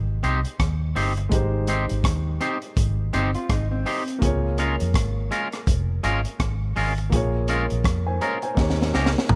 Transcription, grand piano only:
0, 0, Header, 1, 2, 480
1, 0, Start_track
1, 0, Key_signature, -4, "major"
1, 0, Tempo, 725514
1, 873, Time_signature, 4, 2, 24, 8
1, 6189, End_track
2, 0, Start_track
2, 0, Title_t, "Grand piano"
2, 0, Program_c, 0, 0
2, 0, Control_c, 0, 64, 127
2, 0, Note_on_c, 0, 56, 69
2, 0, Note_on_c, 0, 63, 66
2, 0, Note_on_c, 0, 67, 66
2, 0, Note_on_c, 0, 72, 80
2, 839, Note_off_c, 0, 56, 0
2, 845, Note_off_c, 0, 63, 0
2, 851, Note_off_c, 0, 67, 0
2, 855, Note_on_c, 0, 56, 72
2, 858, Note_off_c, 0, 72, 0
2, 867, Note_on_c, 0, 63, 62
2, 880, Note_on_c, 0, 67, 64
2, 894, Note_on_c, 0, 72, 80
2, 2757, Note_off_c, 0, 56, 0
2, 2763, Note_off_c, 0, 63, 0
2, 2770, Note_off_c, 0, 67, 0
2, 2770, Note_on_c, 0, 58, 71
2, 2777, Note_off_c, 0, 72, 0
2, 2784, Note_on_c, 0, 65, 71
2, 2797, Note_on_c, 0, 68, 67
2, 2802, Control_c, 0, 64, 0
2, 2811, Note_on_c, 0, 73, 82
2, 2938, Control_c, 0, 64, 127
2, 4675, Note_off_c, 0, 58, 0
2, 4682, Note_off_c, 0, 65, 0
2, 4688, Note_off_c, 0, 68, 0
2, 4695, Note_off_c, 0, 73, 0
2, 4695, Note_on_c, 0, 58, 74
2, 4707, Note_on_c, 0, 65, 63
2, 4720, Control_c, 0, 64, 0
2, 4720, Note_on_c, 0, 68, 65
2, 4735, Note_on_c, 0, 73, 79
2, 4828, Control_c, 0, 64, 127
2, 4959, Note_off_c, 0, 73, 0
2, 5336, Note_on_c, 0, 80, 61
2, 5342, Note_on_c, 0, 72, 54
2, 5427, Note_off_c, 0, 80, 0
2, 5430, Note_off_c, 0, 72, 0
2, 5433, Note_on_c, 0, 82, 71
2, 5439, Note_on_c, 0, 73, 62
2, 5570, Note_off_c, 0, 82, 0
2, 5573, Note_off_c, 0, 73, 0
2, 5577, Note_on_c, 0, 80, 65
2, 5582, Note_on_c, 0, 72, 55
2, 5643, Note_off_c, 0, 58, 0
2, 5650, Note_off_c, 0, 65, 0
2, 5653, Note_on_c, 0, 58, 72
2, 5657, Note_off_c, 0, 68, 0
2, 5666, Note_on_c, 0, 63, 64
2, 5681, Note_on_c, 0, 67, 59
2, 5682, Control_c, 0, 64, 0
2, 5692, Note_on_c, 0, 73, 78
2, 5781, Control_c, 0, 64, 127
2, 5805, Note_off_c, 0, 80, 0
2, 5808, Note_off_c, 0, 72, 0
2, 6149, Note_on_c, 0, 82, 67
2, 6189, Note_off_c, 0, 58, 0
2, 6189, Note_off_c, 0, 63, 0
2, 6189, Note_off_c, 0, 67, 0
2, 6189, Note_off_c, 0, 73, 0
2, 6189, Note_off_c, 0, 82, 0
2, 6189, End_track
0, 0, End_of_file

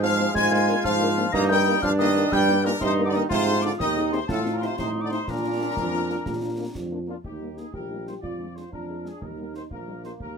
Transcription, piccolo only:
0, 0, Header, 1, 2, 480
1, 0, Start_track
1, 0, Key_signature, -3, "major"
1, 0, Tempo, 328228
1, 513, Time_signature, 6, 3, 24, 8
1, 15177, End_track
2, 0, Start_track
2, 0, Title_t, "Piccolo"
2, 0, Program_c, 0, 72
2, 44, Note_on_c, 0, 89, 108
2, 486, Note_off_c, 0, 89, 0
2, 509, Note_on_c, 0, 92, 116
2, 729, Note_off_c, 0, 92, 0
2, 738, Note_on_c, 0, 92, 108
2, 1191, Note_off_c, 0, 92, 0
2, 1224, Note_on_c, 0, 89, 104
2, 1897, Note_off_c, 0, 89, 0
2, 1932, Note_on_c, 0, 94, 119
2, 2020, Note_off_c, 0, 94, 0
2, 2178, Note_on_c, 0, 91, 117
2, 2630, Note_off_c, 0, 91, 0
2, 2663, Note_on_c, 0, 89, 107
2, 2751, Note_off_c, 0, 89, 0
2, 2903, Note_on_c, 0, 87, 108
2, 3398, Note_on_c, 0, 91, 111
2, 3420, Note_off_c, 0, 87, 0
2, 3877, Note_on_c, 0, 82, 105
2, 3899, Note_off_c, 0, 91, 0
2, 4099, Note_off_c, 0, 82, 0
2, 4108, Note_on_c, 0, 84, 92
2, 4443, Note_off_c, 0, 84, 0
2, 4460, Note_on_c, 0, 86, 89
2, 4516, Note_off_c, 0, 86, 0
2, 4581, Note_on_c, 0, 87, 95
2, 4668, Note_off_c, 0, 87, 0
2, 4815, Note_on_c, 0, 84, 104
2, 5294, Note_on_c, 0, 86, 97
2, 5316, Note_off_c, 0, 84, 0
2, 5523, Note_off_c, 0, 86, 0
2, 5532, Note_on_c, 0, 87, 91
2, 5985, Note_off_c, 0, 87, 0
2, 6024, Note_on_c, 0, 84, 92
2, 6244, Note_off_c, 0, 84, 0
2, 6253, Note_on_c, 0, 81, 93
2, 6341, Note_off_c, 0, 81, 0
2, 6623, Note_on_c, 0, 82, 78
2, 6678, Note_off_c, 0, 82, 0
2, 6730, Note_on_c, 0, 84, 88
2, 6818, Note_off_c, 0, 84, 0
2, 6965, Note_on_c, 0, 84, 82
2, 7330, Note_on_c, 0, 86, 74
2, 7352, Note_off_c, 0, 84, 0
2, 7436, Note_off_c, 0, 86, 0
2, 7444, Note_on_c, 0, 84, 85
2, 7692, Note_on_c, 0, 82, 87
2, 7714, Note_off_c, 0, 84, 0
2, 9858, Note_off_c, 0, 82, 0
2, 15177, End_track
0, 0, End_of_file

